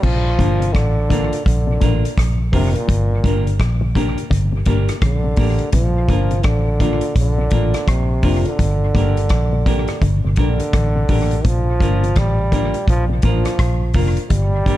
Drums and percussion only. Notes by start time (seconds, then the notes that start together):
0.03 kick, crash
0.39 kick, closed hi-hat
0.62 closed hi-hat
0.75 kick, cross-stick, closed hi-hat
1.10 kick, closed hi-hat
1.33 closed hi-hat
1.46 kick, closed hi-hat
1.81 kick, closed hi-hat
2.05 closed hi-hat
2.18 kick, cross-stick, closed hi-hat
2.53 kick, open hi-hat
2.75 closed hi-hat
2.89 kick, closed hi-hat
3.24 kick, closed hi-hat
3.47 closed hi-hat
3.59 kick, cross-stick, closed hi-hat
3.95 kick, closed hi-hat
4.18 closed hi-hat
4.31 kick, closed hi-hat
4.66 kick, closed hi-hat
4.89 cross-stick, closed hi-hat
5.02 kick, cross-stick, closed hi-hat
5.36 kick, open hi-hat
5.58 closed hi-hat
5.73 kick, closed hi-hat
6.09 kick, closed hi-hat
6.31 closed hi-hat
6.43 kick, cross-stick, closed hi-hat
6.80 kick, closed hi-hat
7.01 closed hi-hat
7.16 kick, closed hi-hat
7.50 kick, closed hi-hat
7.74 cross-stick, closed hi-hat
7.88 kick, cross-stick, closed hi-hat
8.23 kick, open hi-hat
8.45 closed hi-hat
8.59 kick, closed hi-hat
8.95 kick, closed hi-hat
9.17 closed hi-hat
9.29 kick, cross-stick, closed hi-hat
9.66 kick, closed hi-hat
9.88 cross-stick, closed hi-hat
10.02 kick, closed hi-hat
10.36 kick, closed hi-hat
10.60 closed hi-hat
10.73 kick, cross-stick, closed hi-hat
11.09 kick, open hi-hat
11.31 closed hi-hat
11.45 kick, closed hi-hat
11.80 kick, closed hi-hat
12.04 closed hi-hat
12.16 kick, cross-stick, closed hi-hat
12.52 kick, closed hi-hat
12.74 closed hi-hat
12.88 kick, closed hi-hat
13.22 kick, closed hi-hat
13.45 cross-stick, closed hi-hat
13.59 kick, cross-stick, closed hi-hat
13.94 kick, open hi-hat
14.17 closed hi-hat
14.30 kick, closed hi-hat
14.66 kick, closed hi-hat